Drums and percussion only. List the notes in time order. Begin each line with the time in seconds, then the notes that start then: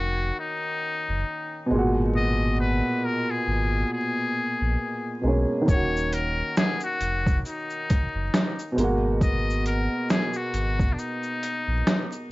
5.68 kick, shaker
5.97 shaker
6.13 closed hi-hat, shaker
6.57 snare, shaker
6.80 shaker
7.01 closed hi-hat, shaker
7.26 kick, shaker
7.45 shaker
7.70 shaker
7.90 kick, closed hi-hat, shaker
8.34 snare, shaker
8.59 shaker
8.78 closed hi-hat, shaker
9.21 kick, shaker
9.50 shaker
9.66 closed hi-hat, shaker
10.10 snare, shaker
10.33 shaker
10.54 closed hi-hat, shaker
10.79 kick, shaker
10.99 shaker
11.23 shaker
11.43 closed hi-hat, shaker
11.87 snare, shaker
12.12 shaker